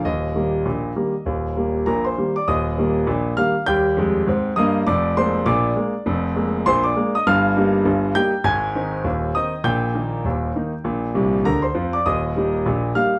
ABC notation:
X:1
M:2/4
L:1/16
Q:"Swing 16ths" 1/4=100
K:Eb
V:1 name="Grand piano"
e8- | e4 [Bb] [cc']2 [dd'] | [ee']6 [ff']2 | [gg']6 [ee']2 |
[dd']2 [cc']2 [dd']4- | [dd']2 z2 [cc'] [dd']2 [ee'] | [ff']6 [gg']2 | [aa']6 [ee']2 |
[gg']8- | [gg']4 [Bb] [cc']2 [dd'] | [ee']6 [ff']2 |]
V:2 name="Grand piano" clef=bass
[E,,,E,,]2 [E,G,B,]2 [B,,,B,,]2 [E,G,B,]2 | [E,,,E,,]2 [E,G,B,]2 [B,,,B,,]2 [E,G,B,]2 | [E,,,E,,]2 [E,G,B,]2 [B,,,B,,]2 [E,G,B,]2 | [E,,G,]2 [F,,A,]2 [A,,C]2 [G,,B,]2 |
[F,,,F,,]2 [A,B,]2 [B,,,B,,]2 [A,B,]2 | [F,,,F,,]2 [A,B,]2 [B,,,B,,]2 [A,B,]2 | [G,,,G,,]2 [G,B,E]2 [G,,,G,,]2 [G,B,E]2 | [A,,,A,,]2 [E,CE]2 [E,,,E,,]2 [E,CE]2 |
[B,,,B,,]2 [E,B,E]2 [E,,,E,,]2 [E,B,E]2 | [B,,,B,,]2 [C,,C,]2 [D,,D,]2 [F,,F,]2 | [E,,,E,,]2 [G,B,E]2 [B,,,B,,]2 [G,B,E]2 |]